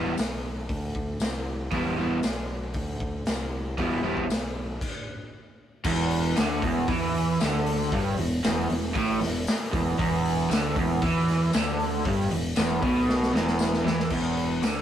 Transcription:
Already playing: E1 E3 G3 B3 E4
0.18 B1, snare, open hi-hat, tambourine
0.69 D2, kick, open hi-hat
0.95 kick
1.20 C2, snare, open hi-hat, tambourine
1.71 E1 E3 G3 B3 E4, kick, open hi-hat
1.97 E3 G3 B3 E4
2.23 B1, snare, open hi-hat, tambourine
2.74 D2, kick, open hi-hat
3.00 kick
3.26 C2, snare, open hi-hat, tambourine
3.78 E1 E3 G3 B3 E4, kick, open hi-hat
4.03 E3 G3 B3 E4
4.17 kick
4.29 B1, snare, open hi-hat, tambourine
4.81 kick, crash
5.84 E1 E2, kick, crash
6.11 open hi-hat
6.36 D2 D3, snare, open hi-hat, tambourine
6.62 E1 E2, kick, open hi-hat
6.88 E2 E3, kick, open hi-hat
7.14 open hi-hat
7.40 D2 D3, snare, open hi-hat, tambourine
7.66 open hi-hat
7.92 G1 G2, kick, open hi-hat
8.18 E1 E2, open hi-hat
8.43 E1 E2, snare, open hi-hat, tambourine
8.70 E1 E2, open hi-hat
8.95 A1 A2, kick, open hi-hat
9.21 E1 E2, snare, open hi-hat
9.47 snare, open hi-hat, tambourine
9.72 E1 E2, kick, open hi-hat
9.98 E1 E2, kick, open hi-hat
10.25 open hi-hat
10.50 D2 D3, snare, open hi-hat, tambourine
10.76 E1 E2, kick, open hi-hat
11.02 E2 E3, kick, open hi-hat
11.28 snare, open hi-hat
11.53 D2 D3, snare, open hi-hat, tambourine
11.80 open hi-hat
12.05 G1 G2, kick, open hi-hat
12.31 E1 E2, open hi-hat
12.56 E1 E2, snare, open hi-hat, tambourine
12.82 B1 B2, kick, open hi-hat
13.09 snare
13.23 snare
13.34 E1 E2, snare
13.47 snare
13.59 snare, tambourine
13.73 snare
13.85 E2 E3, snare
14.00 snare
14.10 E1 E2, kick, crash
14.37 open hi-hat
14.62 D2 D3, snare, open hi-hat, tambourine

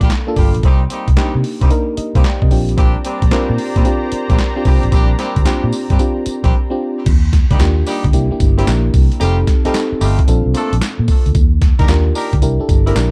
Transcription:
Already playing: A#3 D4 F4 A4
0.01 A#1 G3 A#3 D4 F4 G4, kick, closed hi-hat
0.10 snare, clap, closed hi-hat
0.27 A#3 D4 F4 A4
0.36 G1 G3 A#3 D4 F4 G4, kick, open hi-hat
0.55 A#1, closed hi-hat
0.63 C2 G3 A#3 C4 D#4 G4, kick, closed hi-hat
0.90 G3 A#3 C4 D#4 G4, closed hi-hat
1.08 C2, kick, closed hi-hat
1.16 G3 A#3 C4 D4 D#4 G4, muted fingered electric bass stroke, snare, clap, closed hi-hat
1.35 C3
1.44 open hi-hat
1.61 C2 G3 A#3 C4 D#4 G4, kick, closed hi-hat
1.70 A#3 D4 D#4 A#4, closed hi-hat
1.97 A#4 D#5, muted fingered electric bass stroke, closed hi-hat
2.15 C2 G3 A#3 C4 D#4 G4 C5 F5, kick, closed hi-hat
2.24 D5 G5, snare, clap, closed hi-hat
2.42 C3 A#4 D#5, kick
2.51 A#1 C4 D4 F4 G4, open hi-hat
2.69 closed hi-hat
2.78 G3 A#3 C4 D4 G4 C5 D5 A#5, kick, closed hi-hat
3.04 G3 A#3 C4 D4 G4, closed hi-hat
3.22 A#1, kick, closed hi-hat
3.31 G3 A#3 C4 D4 F4 G4 A#4, muted fingered electric bass stroke, snare, clap, closed hi-hat
3.50 A#2
3.58 open hi-hat
3.76 A#2 G3 A#3 C4 D4 G4, kick, closed hi-hat
3.85 C4 D4 F4 G4, closed hi-hat
4.12 muted fingered electric bass stroke, closed hi-hat
4.29 A#1 G3 A#3 C4 D4 G4, kick, closed hi-hat
4.39 snare, clap, closed hi-hat
4.56 C4 D4 F4 G4
4.65 C2 G3 A#3 C4 D4 G4, kick, open hi-hat
4.83 A1, closed hi-hat
4.92 A#1 G3 A#3 C4 D4 G4, kick, closed hi-hat, tambourine
5.19 G3 A#3 C4 D4 G4, snare, closed hi-hat
5.36 D2, kick, closed hi-hat
5.45 G3 A#3 C4 D4 F4 G4, muted fingered electric bass stroke, snare, clap, closed hi-hat, tambourine
5.64 A#2
5.73 open hi-hat, tambourine
5.90 G2 G3 A#3 C4 D4 G4, kick, closed hi-hat
5.99 C4 D4 F4 G4, closed hi-hat, tambourine
6.26 muted fingered electric bass stroke, closed hi-hat, tambourine
6.44 A#1 G3 A#3 C4 D4 G4, kick, closed hi-hat
6.70 C4 D4 F4 G4
7.06 D#2, kick, closed hi-hat, crash, tambourine
7.33 kick, snare, closed hi-hat
7.51 D2 G3 A#3 D4 D#4 G4, kick, closed hi-hat
7.59 D#2 A#3 D4 F4 G4, snare, clap, closed hi-hat, tambourine
7.86 G3 A#3 D4 D#4 G4, open hi-hat, tambourine
8.04 D2, kick, closed hi-hat
8.13 C2 A#3 D4 E4 G4, closed hi-hat, tambourine
8.31 A#3 D4 E4 G4
8.40 G1, kick, closed hi-hat, tambourine
8.57 G3 A#3 C4 D4 E4 G4, closed hi-hat
8.67 A#1 A#3 D4 E4 A#4, snare, clap, closed hi-hat, tambourine
8.94 C2, kick, open hi-hat, tambourine
9.12 closed hi-hat
9.20 F1 G3 A3 C4 D#4 F4 G4 A4, closed hi-hat, tambourine
9.47 kick, snare, closed hi-hat
9.65 G3 A3 C4 D#4 F4 G4 A4, muted fingered electric bass stroke, closed hi-hat
9.74 snare, clap, closed hi-hat, tambourine
9.92 muted fingered electric bass stroke
10.01 G1 G3 A3 D#4 F4 G4, open hi-hat, tambourine
10.19 kick, closed hi-hat
10.28 A#1 C4 D4 F4 A4, closed hi-hat, tambourine
10.46 C2
10.54 A3 A#3 C4 D4 A4, closed hi-hat, tambourine
10.73 A#1, closed hi-hat
10.81 snare, clap, closed hi-hat, tambourine
10.99 A#2
11.08 kick, open hi-hat, tambourine
11.26 D2, closed hi-hat
11.35 D#2, kick, closed hi-hat, tambourine
11.62 kick, snare, closed hi-hat
11.79 D2 A#3 D4 D#4 G4 A#4, kick, closed hi-hat
11.88 D#2 D4 F4 G4 A#4, snare, clap, closed hi-hat, tambourine
12.15 A#3 D4 D#4 G4 A#4, open hi-hat, tambourine
12.33 D2, kick, closed hi-hat
12.42 C2 D4 E4 G4 A#4, closed hi-hat, tambourine
12.60 D4 E4 G4 A4, muted fingered electric bass stroke
12.69 G1, kick, closed hi-hat, tambourine
12.86 A#3 C4 D4 E4 G4 A#4, closed hi-hat
12.95 A#1 D4 E4 G4 A#4, snare, clap, closed hi-hat, tambourine

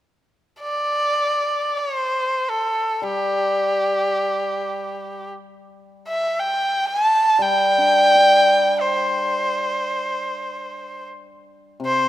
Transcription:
0.60 D5
1.77 C#5
1.96 C5
2.50 A4
3.02 G3 G4
6.08 E5
6.39 G5
6.86 G#5
7.05 A5
7.39 G3 G5
7.78 D4
8.15 G4
8.81 C5
11.80 C3
11.85 C5

